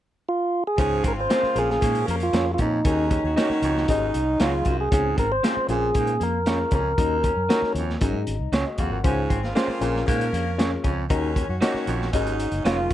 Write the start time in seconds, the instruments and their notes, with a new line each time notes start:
0.29 tonewheel organ F4
0.67 tonewheel organ G#4
0.78 fingered electric bass C#2, baritone saxophone G#2, saxophone section F3 C#4 G#4, reed electric piano C#4 F4 G#4 C5, clean electric guitar C#4, tonewheel organ G#4, kick, closed hi-hat
1.03 fingered electric bass G#1, clean electric guitar C4, kick, closed hi-hat
1.08 tonewheel organ A#4
1.17 saxophone section C#3 C4 F4, tonewheel organ C5
1.29 saxophone section C#3 A#3 F4, clean electric guitar C4 F4 G#4 C5, reed electric piano C#4 F4 G#4 C5, snare, closed hi-hat
1.43 muted fingered electric bass stroke, snare
1.55 fingered electric bass A#1, baritone saxophone A#2, reed electric piano C4 F4 G#4 A#4, tonewheel organ G#4, closed hi-hat
1.62 reed electric piano C#4
1.71 tonewheel organ G#4, snare
1.81 baritone saxophone G#2, fingered electric bass A#2, saxophone section F3 C#4 A#4, clean electric guitar A#3, kick, closed hi-hat
1.95 closed hi-hat
2.07 fingered electric bass F2, clean electric guitar A#3, tonewheel organ A#4, closed hi-hat
2.20 tonewheel organ F4, closed hi-hat
2.33 fingered electric bass F2, reed electric piano C#4 F4 G#4 A#4, clean electric guitar C#4 F4 G#4 C#5, snare, closed hi-hat
2.54 tonewheel organ F4, closed hi-hat
2.59 baritone saxophone F2, fingered electric bass A#2, clean electric guitar C#4, tonewheel organ D#4, kick
2.84 fingered electric bass D#2, baritone saxophone D#2, saxophone section D#3 C#4 G#4, reed electric piano C#4 D#4 F#4 A#4, clean electric guitar D#4, kick, closed hi-hat
3.11 clean electric guitar C#4, kick, closed hi-hat
3.24 fingered electric bass D#2, saxophone section D#3 C#4 F#4
3.36 saxophone section D#3 C#4 F#4, clean electric guitar A#3 C#4 D#4 F#4 C#5, reed electric piano C#4 D#4 F#4 A#4, snare, closed hi-hat
3.50 muted fingered electric bass stroke, snare
3.62 fingered electric bass C#2, baritone saxophone F2, closed hi-hat
3.77 snare
3.88 fingered electric bass G#1, baritone saxophone D#2, saxophone section G#2 F#3 D#4, reed electric piano C#4 D#4 F#4 G#4, clean electric guitar D#4, kick, closed hi-hat
4.14 fingered electric bass C2, closed hi-hat
4.39 fingered electric bass C#2, saxophone section C#3 G#3 F4, reed electric piano F#3 C#4 D#4 G#4, clean electric guitar C#4 F#4 G#4 C#5, tonewheel organ F4, snare, closed hi-hat
4.65 fingered electric bass C2, baritone saxophone F#2, clean electric guitar F#4, kick, closed hi-hat
4.81 tonewheel organ G#4
4.91 fingered electric bass C#2, baritone saxophone G#2, reed electric piano C4 C#4 F4 G#4, clean electric guitar C#4, tonewheel organ G#4, kick, closed hi-hat
5.18 fingered electric bass G#1, clean electric guitar C4, tonewheel organ A#4, kick, closed hi-hat
5.32 tonewheel organ C5
5.43 clean electric guitar C4 F4 G#4 C5, reed electric piano C4 C#4 F4 G#4, snare, closed hi-hat
5.57 muted fingered electric bass stroke
5.69 fingered electric bass A#1, baritone saxophone A#2, reed electric piano A#3 C#4 F4 G#4, tonewheel organ G#4, closed hi-hat
5.95 baritone saxophone G#2, fingered electric bass A#2, clean electric guitar A#3, kick, closed hi-hat
6.07 closed hi-hat
6.20 fingered electric bass F2, clean electric guitar A#3, tonewheel organ A#4, closed hi-hat
6.46 reed electric piano A#3 C#4 F4 G#4, clean electric guitar C#4 F4 G#4 C#5, snare, closed hi-hat
6.71 fingered electric bass C#2, baritone saxophone F2, clean electric guitar C#4, tonewheel organ A#4, kick, closed hi-hat
6.97 fingered electric bass D#2, baritone saxophone D#2, reed electric piano C#4 D#4 F#4 A#4, clean electric guitar D#4, kick, closed hi-hat
7.24 clean electric guitar C#4, kick, closed hi-hat
7.37 fingered electric bass F#2
7.49 clean electric guitar C#4 F#4 A#4 C#5, reed electric piano C#4 D#4 F#4 A#4, snare, closed hi-hat
7.62 muted fingered electric bass stroke, snare
7.75 fingered electric bass D#2, baritone saxophone F2, closed hi-hat
7.90 snare
8.01 fingered electric bass G#1, baritone saxophone F#2, reed electric piano C#4 D#4 F#4 G#4, clean electric guitar D#4, kick, closed hi-hat
8.13 fingered electric bass G#2
8.27 fingered electric bass G#1, closed hi-hat
8.40 fingered electric bass C2
8.52 fingered electric bass C#2, clean electric guitar C#4 F#4 G#4 C#5, reed electric piano F4 C#5, snare, closed hi-hat
8.67 reed electric piano F#4 D#5
8.78 fingered electric bass D#2, baritone saxophone F2, clean electric guitar F#4, reed electric piano G#4 F5, kick, closed hi-hat
8.90 fingered electric bass G#1, reed electric piano A#4 F#5
9.04 fingered electric bass C#2, baritone saxophone G#2, saxophone section F3 C#4 G#4, reed electric piano C#4 F4 G#4 C5, clean electric guitar C#4, kick, closed hi-hat
9.29 fingered electric bass G#1, clean electric guitar C4, kick, closed hi-hat
9.43 saxophone section C#3 C4 F4, snare
9.55 saxophone section C#3 A#3 F4, clean electric guitar G#3 C4 C#4 F4 C5, reed electric piano C#4 F4 G#4 C5, snare, closed hi-hat
9.68 muted fingered electric bass stroke, snare
9.81 fingered electric bass A#1, baritone saxophone A#2, reed electric piano C#4 F4 G#4 A#4, closed hi-hat
9.96 snare
10.06 baritone saxophone G#2, fingered electric bass A#2, saxophone section F3 C#4 A#4, clean electric guitar A#3, kick, closed hi-hat
10.21 closed hi-hat
10.33 fingered electric bass F2, clean electric guitar A#3, closed hi-hat
10.58 reed electric piano C#4 F4 G#4 C#5, clean electric guitar C#4 F4 G#4 C#5, snare, closed hi-hat
10.84 fingered electric bass C#2, baritone saxophone F2, clean electric guitar C#4, kick, closed hi-hat
11.09 fingered electric bass D#2, baritone saxophone D#2, saxophone section D#3 C#4 G#4, reed electric piano C#4 D#4 F#4 A#4, clean electric guitar D#4, kick, closed hi-hat
11.36 clean electric guitar C#4, kick, closed hi-hat
11.49 fingered electric bass F#2, saxophone section D#3 C#4 F#4
11.61 saxophone section D#3 C#4 F#4, clean electric guitar A#3 C#4 D#4 F#4 C#5, reed electric piano C#4 D#4 F#4 A#4, snare, closed hi-hat
11.74 muted fingered electric bass stroke, snare
11.87 fingered electric bass A#1, baritone saxophone F2, closed hi-hat
12.02 snare
12.13 fingered electric bass G#1, baritone saxophone D#2, saxophone section G#2 F#3 D#4, reed electric piano C#4 D#4 F#4 G#4, clean electric guitar D#4, kick, closed hi-hat
12.27 closed hi-hat
12.40 closed hi-hat
12.52 fingered electric bass F#1, closed hi-hat
12.65 fingered electric bass F1, saxophone section C#3 G#3 F4, reed electric piano F#3 C#4 D#4 A#4, clean electric guitar C#4 F#4 G#4 C#5, tonewheel organ F4, snare, closed hi-hat
12.90 clean electric guitar F#4, closed hi-hat